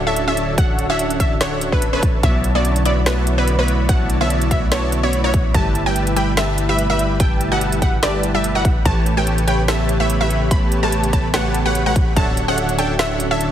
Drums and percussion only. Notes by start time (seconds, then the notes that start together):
0.16 closed hi-hat
0.37 closed hi-hat
0.58 kick, closed hi-hat
0.79 closed hi-hat
0.99 closed hi-hat
1.10 closed hi-hat
1.20 kick, closed hi-hat
1.41 snare, closed hi-hat
1.61 closed hi-hat
1.72 kick
1.82 closed hi-hat
2.03 kick, closed hi-hat
2.23 kick, closed hi-hat
2.44 closed hi-hat
2.65 closed hi-hat
2.76 closed hi-hat
2.85 closed hi-hat
3.06 snare, closed hi-hat
3.27 closed hi-hat
3.48 closed hi-hat
3.68 closed hi-hat
3.89 kick, closed hi-hat
4.10 closed hi-hat
4.30 closed hi-hat
4.42 closed hi-hat
4.51 kick, closed hi-hat
4.72 snare, closed hi-hat
4.92 closed hi-hat
5.13 closed hi-hat
5.34 kick, closed hi-hat
5.54 kick, closed hi-hat
5.75 closed hi-hat
5.96 closed hi-hat
6.07 closed hi-hat
6.17 closed hi-hat
6.37 snare, closed hi-hat
6.58 closed hi-hat
6.79 closed hi-hat
6.99 closed hi-hat
7.20 kick, closed hi-hat
7.41 closed hi-hat
7.61 closed hi-hat
7.72 closed hi-hat
7.82 kick, closed hi-hat
8.03 snare, closed hi-hat
8.23 closed hi-hat
8.44 closed hi-hat
8.65 kick, closed hi-hat
8.85 kick, closed hi-hat
9.06 closed hi-hat
9.27 closed hi-hat
9.38 closed hi-hat
9.48 closed hi-hat
9.68 snare, closed hi-hat
9.89 closed hi-hat
10.10 closed hi-hat
10.30 closed hi-hat
10.51 kick, closed hi-hat
10.72 closed hi-hat
10.92 closed hi-hat
11.04 closed hi-hat
11.13 kick, closed hi-hat
11.34 snare, closed hi-hat
11.54 closed hi-hat
11.75 closed hi-hat
11.96 kick, closed hi-hat
12.16 kick, closed hi-hat
12.37 closed hi-hat
12.58 closed hi-hat
12.69 closed hi-hat
12.79 closed hi-hat
12.99 snare, closed hi-hat
13.20 closed hi-hat
13.41 closed hi-hat